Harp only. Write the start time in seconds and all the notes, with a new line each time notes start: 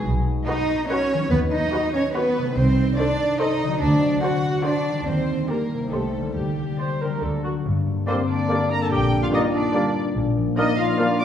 Already playing: B2 F#3 B3
0.02 D#4
1.13 D#3
1.18 F#3
1.22 B3
1.27 D#4
2.38 C3
2.43 A3
2.47 C4
2.52 D#4
3.63 D3
3.67 F#3
3.72 C4
3.76 D4
4.88 D#3
4.93 G3
4.97 A#3
5.02 D4
5.74 C3
5.78 G3
5.83 C4
5.87 D#4
6.17 D3
6.22 G3 A#3
6.31 D4
7.04 D3
7.09 F#3
7.14 A3
7.18 D4
7.66 G2
7.86 D3
8.07 G3
8.28 A#3
8.50 D4
8.71 A#3
8.91 A#2
9.13 A#3
9.33 G3
9.54 D4
9.75 A#4
9.95 D4
10.17 A#2
10.37 F3
10.57 A#3
10.78 D4
11.20 D4